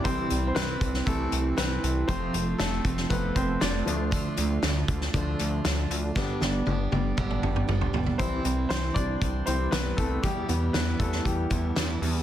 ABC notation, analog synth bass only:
X:1
M:4/4
L:1/8
Q:1/4=118
K:C
V:1 name="Analog synth bass" clef=bass
C,, C,, C,, C,, C,, C,, C,, C,, | F,,, F,,, F,,, F,,, F,,, F,,, F,,, D,,- | D,, D,, D,, D,, D,, D,, D,, D,, | G,,, G,,, G,,, G,,, G,,, G,,, G,,, G,,, |
C,, C,, C,, C,, C,, C,, C,, C,, | E,, E,, E,, E,, E,, E,, E,, E,, |]